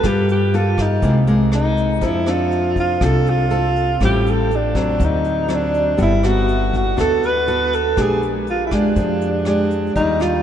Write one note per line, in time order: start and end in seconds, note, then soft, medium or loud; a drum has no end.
0.03 0.99 G2 medium
0.03 1.00 G3 soft
0.03 0.36 A#3 soft
0.03 0.36 F4 soft
0.03 0.30 G4 medium
0.03 0.36 A4 medium
0.03 kick medium
0.03 cross-stick medium
0.03 closed hi-hat medium
0.29 0.58 G4 medium
0.29 closed hi-hat soft
0.54 0.87 A#3 medium
0.54 0.87 F4 medium
0.54 0.83 F4 medium
0.54 0.87 A4 medium
0.54 closed hi-hat soft
0.78 1.27 D#4 medium
0.78 kick soft
0.78 cross-stick medium
0.78 closed hi-hat soft
1.02 1.98 C2 medium
1.02 1.99 C3 medium
1.02 1.17 G#3 medium
1.02 1.18 A#3 soft
1.02 1.18 E4 medium
1.02 kick medium
1.02 closed hi-hat medium
1.27 1.98 G#3 medium
1.27 1.98 A#3 medium
1.27 closed hi-hat soft
1.52 2.07 D#4 medium
1.52 cross-stick medium
1.52 closed hi-hat soft
1.77 closed hi-hat soft
2.01 2.97 F2 medium
2.01 2.98 F3 medium
2.01 2.23 C4 soft
2.01 2.23 D4 medium
2.01 2.23 A4 medium
2.01 kick medium
2.01 closed hi-hat soft
2.05 2.31 E4 medium
2.26 2.97 C4 medium
2.26 2.97 D4 medium
2.26 2.78 F4 medium
2.26 2.97 A4 medium
2.26 cross-stick soft
2.26 closed hi-hat soft
2.51 closed hi-hat soft
2.76 3.06 F4 medium
2.76 kick soft
2.76 closed hi-hat soft
3.01 3.96 C2 medium
3.01 3.98 C3 soft
3.01 3.47 C4 medium
3.01 3.47 D4 medium
3.01 3.47 A4 medium
3.01 3.31 A4 medium
3.01 kick medium
3.01 cross-stick medium
3.01 closed hi-hat soft
3.27 4.02 F4 medium
3.27 closed hi-hat soft
3.50 3.96 C4 soft
3.50 3.96 D4 medium
3.50 3.96 A4 medium
3.50 closed hi-hat soft
3.76 closed hi-hat soft
4.00 4.96 A1 medium
4.00 4.97 A2 medium
4.00 4.50 G3 medium
4.00 4.50 C4 medium
4.00 4.50 E4 medium
4.00 kick medium
4.00 cross-stick medium
4.00 closed hi-hat medium
4.05 4.32 G4 medium
4.26 4.58 A4 medium
4.26 closed hi-hat soft
4.51 closed hi-hat soft
4.56 5.06 D4 medium
4.75 5.45 F#3 medium
4.75 5.46 C4 medium
4.75 kick soft
4.75 cross-stick medium
4.75 closed hi-hat soft
4.99 5.95 D2 medium
4.99 5.96 D3 medium
4.99 kick medium
4.99 closed hi-hat medium
5.04 5.56 D#4 medium
5.24 closed hi-hat soft
5.48 5.96 F#3 medium
5.48 5.96 C4 medium
5.48 cross-stick medium
5.48 closed hi-hat soft
5.54 6.01 D4 medium
5.74 closed hi-hat soft
5.97 6.94 G1 medium
5.97 6.95 G3 medium
5.97 6.13 B3 medium
5.97 6.13 F#4 medium
5.97 6.13 A4 medium
5.97 kick medium
5.97 closed hi-hat medium
6.03 6.29 E4 medium
6.23 6.94 B3 medium
6.23 6.94 F#4 medium
6.23 6.94 A4 medium
6.23 cross-stick soft
6.23 closed hi-hat soft
6.27 6.75 F#4 medium
6.48 closed hi-hat soft
6.73 6.98 F#4 medium
6.73 kick soft
6.73 closed hi-hat soft
6.96 7.93 D2 medium
6.96 7.94 D3 soft
6.96 7.29 B3 soft
6.96 7.30 F#4 medium
6.96 7.30 A4 medium
6.96 7.27 A4 medium
6.96 kick medium
6.96 cross-stick medium
6.96 closed hi-hat soft
7.23 7.76 B4 loud
7.23 closed hi-hat soft
7.47 7.80 B3 soft
7.47 7.80 F#4 medium
7.47 7.79 A4 medium
7.47 closed hi-hat soft
7.73 8.03 A4 medium
7.73 closed hi-hat soft
7.96 8.93 A#1 medium
7.96 8.94 A#2 medium
7.96 8.46 G#3 medium
7.96 8.47 D4 medium
7.96 8.47 G4 medium
7.96 kick medium
7.96 cross-stick medium
7.96 closed hi-hat medium
8.01 8.24 G#4 medium
8.22 closed hi-hat soft
8.47 8.65 F4 medium
8.47 closed hi-hat soft
8.66 8.75 E4 medium
8.71 9.42 G#3 medium
8.71 9.42 D4 medium
8.71 9.47 D4 medium
8.71 9.43 G4 medium
8.71 kick soft
8.71 cross-stick medium
8.71 closed hi-hat soft
8.96 9.92 F2 medium
8.96 9.93 F3 medium
8.96 kick medium
8.96 closed hi-hat medium
9.21 closed hi-hat soft
9.45 9.94 G#3 medium
9.45 9.94 D4 soft
9.45 9.94 D4 medium
9.45 9.94 G4 medium
9.45 cross-stick medium
9.45 closed hi-hat soft
9.71 closed hi-hat soft
9.95 10.43 D#2 medium
9.95 10.43 D#3 medium
9.95 10.17 G3 medium
9.95 10.17 D4 medium
9.95 10.23 D#4 medium
9.95 10.17 F4 medium
9.95 kick medium
9.95 closed hi-hat medium
10.20 10.43 G3 medium
10.20 10.43 D4 soft
10.20 10.43 F4 medium
10.20 cross-stick soft
10.20 closed hi-hat soft